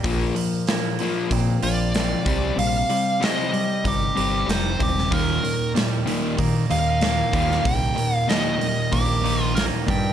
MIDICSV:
0, 0, Header, 1, 6, 480
1, 0, Start_track
1, 0, Key_signature, -3, "major"
1, 0, Tempo, 634921
1, 27, Time_signature, 4, 2, 24, 8
1, 7658, End_track
2, 0, Start_track
2, 0, Title_t, "Lead electric guitar"
2, 0, Program_c, 0, 29
2, 1235, Note_on_c, 0, 74, 95
2, 1957, Note_off_c, 0, 74, 0
2, 1960, Note_on_c, 0, 77, 99
2, 2450, Note_off_c, 0, 77, 0
2, 2454, Note_on_c, 0, 75, 92
2, 2930, Note_on_c, 0, 67, 82
2, 2937, Note_off_c, 0, 75, 0
2, 3404, Note_on_c, 0, 72, 91
2, 3415, Note_off_c, 0, 67, 0
2, 3644, Note_off_c, 0, 72, 0
2, 3648, Note_on_c, 0, 67, 77
2, 3879, Note_on_c, 0, 70, 75
2, 3887, Note_off_c, 0, 67, 0
2, 4325, Note_off_c, 0, 70, 0
2, 5073, Note_on_c, 0, 77, 110
2, 5783, Note_on_c, 0, 79, 113
2, 5813, Note_off_c, 0, 77, 0
2, 6161, Note_off_c, 0, 79, 0
2, 6161, Note_on_c, 0, 77, 113
2, 6267, Note_on_c, 0, 75, 102
2, 6282, Note_off_c, 0, 77, 0
2, 6745, Note_on_c, 0, 67, 89
2, 6763, Note_off_c, 0, 75, 0
2, 7123, Note_off_c, 0, 67, 0
2, 7123, Note_on_c, 0, 65, 89
2, 7220, Note_on_c, 0, 70, 90
2, 7242, Note_off_c, 0, 65, 0
2, 7286, Note_off_c, 0, 70, 0
2, 7486, Note_on_c, 0, 79, 92
2, 7658, Note_off_c, 0, 79, 0
2, 7658, End_track
3, 0, Start_track
3, 0, Title_t, "Clean electric guitar"
3, 0, Program_c, 1, 27
3, 32, Note_on_c, 1, 46, 71
3, 260, Note_on_c, 1, 53, 65
3, 511, Note_on_c, 1, 58, 67
3, 742, Note_off_c, 1, 53, 0
3, 751, Note_on_c, 1, 53, 70
3, 989, Note_on_c, 1, 60, 68
3, 1229, Note_on_c, 1, 65, 74
3, 1232, Note_off_c, 1, 46, 0
3, 1465, Note_off_c, 1, 60, 0
3, 1474, Note_on_c, 1, 60, 63
3, 1710, Note_off_c, 1, 65, 0
3, 1711, Note_off_c, 1, 53, 0
3, 1711, Note_off_c, 1, 58, 0
3, 1712, Note_off_c, 1, 60, 0
3, 1712, Note_on_c, 1, 48, 58
3, 1927, Note_off_c, 1, 48, 0
3, 1937, Note_on_c, 1, 48, 73
3, 2188, Note_on_c, 1, 55, 68
3, 2430, Note_on_c, 1, 60, 69
3, 2664, Note_off_c, 1, 55, 0
3, 2667, Note_on_c, 1, 55, 73
3, 2910, Note_on_c, 1, 63, 63
3, 3144, Note_off_c, 1, 48, 0
3, 3152, Note_on_c, 1, 67, 72
3, 3386, Note_off_c, 1, 63, 0
3, 3389, Note_on_c, 1, 63, 60
3, 3612, Note_off_c, 1, 60, 0
3, 3621, Note_on_c, 1, 60, 61
3, 3866, Note_off_c, 1, 60, 0
3, 3867, Note_on_c, 1, 39, 78
3, 4098, Note_off_c, 1, 55, 0
3, 4101, Note_on_c, 1, 51, 64
3, 4339, Note_on_c, 1, 55, 64
3, 4572, Note_off_c, 1, 51, 0
3, 4581, Note_on_c, 1, 51, 64
3, 4824, Note_off_c, 1, 63, 0
3, 4827, Note_on_c, 1, 58, 62
3, 5069, Note_off_c, 1, 39, 0
3, 5070, Note_off_c, 1, 67, 0
3, 5073, Note_on_c, 1, 63, 73
3, 5313, Note_off_c, 1, 58, 0
3, 5316, Note_on_c, 1, 58, 70
3, 5536, Note_off_c, 1, 55, 0
3, 5545, Note_on_c, 1, 55, 60
3, 5778, Note_on_c, 1, 39, 76
3, 5786, Note_off_c, 1, 51, 0
3, 6015, Note_on_c, 1, 51, 70
3, 6255, Note_off_c, 1, 55, 0
3, 6264, Note_on_c, 1, 55, 64
3, 6272, Note_off_c, 1, 63, 0
3, 6493, Note_off_c, 1, 51, 0
3, 6502, Note_on_c, 1, 51, 67
3, 6740, Note_off_c, 1, 58, 0
3, 6743, Note_on_c, 1, 58, 72
3, 6984, Note_off_c, 1, 39, 0
3, 6985, Note_on_c, 1, 63, 70
3, 7217, Note_off_c, 1, 58, 0
3, 7226, Note_on_c, 1, 58, 64
3, 7452, Note_off_c, 1, 55, 0
3, 7461, Note_on_c, 1, 55, 68
3, 7658, Note_off_c, 1, 51, 0
3, 7658, Note_off_c, 1, 55, 0
3, 7658, Note_off_c, 1, 58, 0
3, 7658, Note_off_c, 1, 63, 0
3, 7658, End_track
4, 0, Start_track
4, 0, Title_t, "Overdriven electric guitar"
4, 0, Program_c, 2, 29
4, 28, Note_on_c, 2, 46, 82
4, 30, Note_on_c, 2, 53, 88
4, 35, Note_on_c, 2, 58, 88
4, 254, Note_off_c, 2, 46, 0
4, 255, Note_off_c, 2, 53, 0
4, 257, Note_off_c, 2, 58, 0
4, 270, Note_on_c, 2, 46, 70
4, 272, Note_on_c, 2, 53, 82
4, 485, Note_off_c, 2, 46, 0
4, 486, Note_off_c, 2, 53, 0
4, 520, Note_on_c, 2, 46, 70
4, 521, Note_on_c, 2, 53, 77
4, 731, Note_off_c, 2, 46, 0
4, 731, Note_off_c, 2, 53, 0
4, 760, Note_on_c, 2, 46, 91
4, 766, Note_on_c, 2, 53, 91
4, 769, Note_on_c, 2, 58, 94
4, 978, Note_off_c, 2, 46, 0
4, 982, Note_off_c, 2, 53, 0
4, 985, Note_off_c, 2, 58, 0
4, 987, Note_on_c, 2, 46, 63
4, 991, Note_on_c, 2, 53, 75
4, 1204, Note_off_c, 2, 46, 0
4, 1206, Note_off_c, 2, 53, 0
4, 1234, Note_on_c, 2, 46, 63
4, 1236, Note_on_c, 2, 53, 78
4, 1448, Note_off_c, 2, 46, 0
4, 1449, Note_off_c, 2, 53, 0
4, 1474, Note_on_c, 2, 46, 66
4, 1479, Note_on_c, 2, 53, 82
4, 1688, Note_off_c, 2, 46, 0
4, 1691, Note_off_c, 2, 53, 0
4, 1701, Note_on_c, 2, 48, 88
4, 1707, Note_on_c, 2, 55, 102
4, 1711, Note_on_c, 2, 60, 96
4, 1926, Note_off_c, 2, 48, 0
4, 1934, Note_off_c, 2, 55, 0
4, 1936, Note_off_c, 2, 60, 0
4, 1936, Note_on_c, 2, 48, 61
4, 1944, Note_on_c, 2, 55, 75
4, 2159, Note_off_c, 2, 48, 0
4, 2163, Note_off_c, 2, 55, 0
4, 2190, Note_on_c, 2, 48, 76
4, 2196, Note_on_c, 2, 55, 85
4, 2406, Note_off_c, 2, 48, 0
4, 2409, Note_off_c, 2, 55, 0
4, 2420, Note_on_c, 2, 48, 93
4, 2426, Note_on_c, 2, 55, 97
4, 2435, Note_on_c, 2, 60, 90
4, 2651, Note_off_c, 2, 48, 0
4, 2654, Note_off_c, 2, 55, 0
4, 2659, Note_off_c, 2, 60, 0
4, 2670, Note_on_c, 2, 48, 67
4, 2671, Note_on_c, 2, 55, 71
4, 2887, Note_off_c, 2, 48, 0
4, 2887, Note_off_c, 2, 55, 0
4, 2906, Note_on_c, 2, 48, 67
4, 2908, Note_on_c, 2, 55, 78
4, 3125, Note_off_c, 2, 48, 0
4, 3125, Note_off_c, 2, 55, 0
4, 3142, Note_on_c, 2, 48, 77
4, 3144, Note_on_c, 2, 55, 91
4, 3153, Note_on_c, 2, 60, 90
4, 3367, Note_off_c, 2, 48, 0
4, 3373, Note_off_c, 2, 55, 0
4, 3376, Note_on_c, 2, 48, 65
4, 3378, Note_off_c, 2, 60, 0
4, 3382, Note_on_c, 2, 55, 74
4, 3600, Note_off_c, 2, 48, 0
4, 3602, Note_off_c, 2, 55, 0
4, 3625, Note_on_c, 2, 48, 70
4, 3628, Note_on_c, 2, 55, 76
4, 3844, Note_off_c, 2, 48, 0
4, 3846, Note_off_c, 2, 55, 0
4, 3865, Note_on_c, 2, 39, 79
4, 3868, Note_on_c, 2, 46, 81
4, 3872, Note_on_c, 2, 51, 86
4, 4094, Note_off_c, 2, 39, 0
4, 4095, Note_off_c, 2, 46, 0
4, 4097, Note_off_c, 2, 51, 0
4, 4111, Note_on_c, 2, 39, 74
4, 4114, Note_on_c, 2, 46, 73
4, 4327, Note_off_c, 2, 39, 0
4, 4328, Note_off_c, 2, 46, 0
4, 4349, Note_on_c, 2, 39, 73
4, 4349, Note_on_c, 2, 46, 85
4, 4566, Note_off_c, 2, 39, 0
4, 4566, Note_off_c, 2, 46, 0
4, 4579, Note_on_c, 2, 39, 94
4, 4581, Note_on_c, 2, 46, 89
4, 4586, Note_on_c, 2, 51, 93
4, 4799, Note_off_c, 2, 39, 0
4, 4808, Note_off_c, 2, 46, 0
4, 4808, Note_on_c, 2, 39, 67
4, 4814, Note_off_c, 2, 51, 0
4, 4817, Note_on_c, 2, 46, 83
4, 5035, Note_off_c, 2, 39, 0
4, 5040, Note_off_c, 2, 46, 0
4, 5064, Note_on_c, 2, 39, 67
4, 5068, Note_on_c, 2, 46, 65
4, 5284, Note_off_c, 2, 39, 0
4, 5286, Note_off_c, 2, 46, 0
4, 5303, Note_on_c, 2, 39, 68
4, 5306, Note_on_c, 2, 46, 75
4, 5523, Note_off_c, 2, 39, 0
4, 5525, Note_off_c, 2, 46, 0
4, 5534, Note_on_c, 2, 39, 90
4, 5541, Note_on_c, 2, 46, 99
4, 5546, Note_on_c, 2, 51, 115
4, 5768, Note_off_c, 2, 39, 0
4, 5769, Note_off_c, 2, 46, 0
4, 5774, Note_off_c, 2, 51, 0
4, 5778, Note_on_c, 2, 39, 56
4, 5778, Note_on_c, 2, 46, 68
4, 6001, Note_off_c, 2, 39, 0
4, 6001, Note_off_c, 2, 46, 0
4, 6010, Note_on_c, 2, 39, 80
4, 6019, Note_on_c, 2, 46, 84
4, 6237, Note_off_c, 2, 39, 0
4, 6241, Note_off_c, 2, 46, 0
4, 6257, Note_on_c, 2, 39, 97
4, 6260, Note_on_c, 2, 46, 86
4, 6264, Note_on_c, 2, 51, 99
4, 6484, Note_off_c, 2, 46, 0
4, 6486, Note_off_c, 2, 39, 0
4, 6493, Note_off_c, 2, 51, 0
4, 6493, Note_on_c, 2, 46, 73
4, 6495, Note_on_c, 2, 39, 64
4, 6718, Note_off_c, 2, 46, 0
4, 6719, Note_off_c, 2, 39, 0
4, 6739, Note_on_c, 2, 39, 72
4, 6742, Note_on_c, 2, 46, 80
4, 6961, Note_off_c, 2, 39, 0
4, 6962, Note_off_c, 2, 46, 0
4, 6989, Note_on_c, 2, 39, 89
4, 6994, Note_on_c, 2, 46, 85
4, 6999, Note_on_c, 2, 51, 98
4, 7213, Note_off_c, 2, 39, 0
4, 7218, Note_off_c, 2, 46, 0
4, 7220, Note_off_c, 2, 51, 0
4, 7222, Note_on_c, 2, 39, 82
4, 7226, Note_on_c, 2, 46, 78
4, 7442, Note_off_c, 2, 39, 0
4, 7444, Note_off_c, 2, 46, 0
4, 7460, Note_on_c, 2, 39, 76
4, 7460, Note_on_c, 2, 46, 88
4, 7658, Note_off_c, 2, 39, 0
4, 7658, Note_off_c, 2, 46, 0
4, 7658, End_track
5, 0, Start_track
5, 0, Title_t, "Fingered electric bass"
5, 0, Program_c, 3, 33
5, 36, Note_on_c, 3, 34, 106
5, 225, Note_off_c, 3, 34, 0
5, 995, Note_on_c, 3, 46, 86
5, 1185, Note_off_c, 3, 46, 0
5, 1233, Note_on_c, 3, 34, 79
5, 1615, Note_off_c, 3, 34, 0
5, 1711, Note_on_c, 3, 36, 84
5, 1902, Note_off_c, 3, 36, 0
5, 1946, Note_on_c, 3, 34, 88
5, 2140, Note_off_c, 3, 34, 0
5, 2910, Note_on_c, 3, 31, 96
5, 3102, Note_off_c, 3, 31, 0
5, 3160, Note_on_c, 3, 31, 80
5, 3372, Note_off_c, 3, 31, 0
5, 3391, Note_on_c, 3, 29, 86
5, 3607, Note_off_c, 3, 29, 0
5, 3633, Note_on_c, 3, 27, 81
5, 3848, Note_off_c, 3, 27, 0
5, 3868, Note_on_c, 3, 39, 110
5, 4061, Note_off_c, 3, 39, 0
5, 4829, Note_on_c, 3, 51, 80
5, 5021, Note_off_c, 3, 51, 0
5, 5074, Note_on_c, 3, 39, 79
5, 5456, Note_off_c, 3, 39, 0
5, 5545, Note_on_c, 3, 39, 84
5, 5739, Note_off_c, 3, 39, 0
5, 5787, Note_on_c, 3, 36, 95
5, 5980, Note_off_c, 3, 36, 0
5, 6751, Note_on_c, 3, 34, 90
5, 7325, Note_off_c, 3, 34, 0
5, 7473, Note_on_c, 3, 43, 95
5, 7658, Note_off_c, 3, 43, 0
5, 7658, End_track
6, 0, Start_track
6, 0, Title_t, "Drums"
6, 33, Note_on_c, 9, 36, 117
6, 42, Note_on_c, 9, 46, 81
6, 109, Note_off_c, 9, 36, 0
6, 117, Note_off_c, 9, 46, 0
6, 273, Note_on_c, 9, 46, 59
6, 349, Note_off_c, 9, 46, 0
6, 509, Note_on_c, 9, 46, 72
6, 518, Note_on_c, 9, 38, 105
6, 585, Note_off_c, 9, 46, 0
6, 594, Note_off_c, 9, 38, 0
6, 747, Note_on_c, 9, 46, 54
6, 822, Note_off_c, 9, 46, 0
6, 990, Note_on_c, 9, 36, 82
6, 990, Note_on_c, 9, 46, 70
6, 1066, Note_off_c, 9, 36, 0
6, 1066, Note_off_c, 9, 46, 0
6, 1228, Note_on_c, 9, 46, 61
6, 1304, Note_off_c, 9, 46, 0
6, 1470, Note_on_c, 9, 46, 66
6, 1479, Note_on_c, 9, 38, 92
6, 1546, Note_off_c, 9, 46, 0
6, 1555, Note_off_c, 9, 38, 0
6, 1709, Note_on_c, 9, 36, 110
6, 1717, Note_on_c, 9, 46, 64
6, 1785, Note_off_c, 9, 36, 0
6, 1792, Note_off_c, 9, 46, 0
6, 1956, Note_on_c, 9, 46, 84
6, 2032, Note_off_c, 9, 46, 0
6, 2190, Note_on_c, 9, 46, 47
6, 2266, Note_off_c, 9, 46, 0
6, 2439, Note_on_c, 9, 46, 73
6, 2448, Note_on_c, 9, 38, 100
6, 2514, Note_off_c, 9, 46, 0
6, 2523, Note_off_c, 9, 38, 0
6, 2673, Note_on_c, 9, 46, 47
6, 2749, Note_off_c, 9, 46, 0
6, 2912, Note_on_c, 9, 36, 86
6, 2913, Note_on_c, 9, 46, 67
6, 2987, Note_off_c, 9, 36, 0
6, 2988, Note_off_c, 9, 46, 0
6, 3154, Note_on_c, 9, 46, 52
6, 3230, Note_off_c, 9, 46, 0
6, 3397, Note_on_c, 9, 46, 65
6, 3406, Note_on_c, 9, 38, 108
6, 3473, Note_off_c, 9, 46, 0
6, 3482, Note_off_c, 9, 38, 0
6, 3632, Note_on_c, 9, 36, 91
6, 3638, Note_on_c, 9, 46, 54
6, 3707, Note_off_c, 9, 36, 0
6, 3714, Note_off_c, 9, 46, 0
6, 3766, Note_on_c, 9, 38, 29
6, 3841, Note_off_c, 9, 38, 0
6, 3871, Note_on_c, 9, 36, 123
6, 3872, Note_on_c, 9, 46, 81
6, 3946, Note_off_c, 9, 36, 0
6, 3947, Note_off_c, 9, 46, 0
6, 4118, Note_on_c, 9, 46, 54
6, 4193, Note_off_c, 9, 46, 0
6, 4356, Note_on_c, 9, 46, 71
6, 4366, Note_on_c, 9, 38, 108
6, 4432, Note_off_c, 9, 46, 0
6, 4441, Note_off_c, 9, 38, 0
6, 4591, Note_on_c, 9, 46, 59
6, 4667, Note_off_c, 9, 46, 0
6, 4826, Note_on_c, 9, 46, 79
6, 4828, Note_on_c, 9, 36, 84
6, 4901, Note_off_c, 9, 46, 0
6, 4904, Note_off_c, 9, 36, 0
6, 5069, Note_on_c, 9, 46, 59
6, 5145, Note_off_c, 9, 46, 0
6, 5302, Note_on_c, 9, 46, 72
6, 5311, Note_on_c, 9, 38, 98
6, 5378, Note_off_c, 9, 46, 0
6, 5387, Note_off_c, 9, 38, 0
6, 5545, Note_on_c, 9, 36, 88
6, 5547, Note_on_c, 9, 46, 63
6, 5620, Note_off_c, 9, 36, 0
6, 5622, Note_off_c, 9, 46, 0
6, 5680, Note_on_c, 9, 38, 33
6, 5755, Note_off_c, 9, 38, 0
6, 5786, Note_on_c, 9, 36, 119
6, 5788, Note_on_c, 9, 46, 85
6, 5862, Note_off_c, 9, 36, 0
6, 5864, Note_off_c, 9, 46, 0
6, 6030, Note_on_c, 9, 46, 57
6, 6106, Note_off_c, 9, 46, 0
6, 6270, Note_on_c, 9, 46, 70
6, 6279, Note_on_c, 9, 38, 109
6, 6346, Note_off_c, 9, 46, 0
6, 6355, Note_off_c, 9, 38, 0
6, 6511, Note_on_c, 9, 46, 53
6, 6587, Note_off_c, 9, 46, 0
6, 6748, Note_on_c, 9, 36, 80
6, 6750, Note_on_c, 9, 46, 78
6, 6824, Note_off_c, 9, 36, 0
6, 6826, Note_off_c, 9, 46, 0
6, 6997, Note_on_c, 9, 46, 53
6, 7072, Note_off_c, 9, 46, 0
6, 7232, Note_on_c, 9, 46, 69
6, 7241, Note_on_c, 9, 38, 89
6, 7308, Note_off_c, 9, 46, 0
6, 7317, Note_off_c, 9, 38, 0
6, 7472, Note_on_c, 9, 36, 85
6, 7479, Note_on_c, 9, 46, 58
6, 7547, Note_off_c, 9, 36, 0
6, 7555, Note_off_c, 9, 46, 0
6, 7658, End_track
0, 0, End_of_file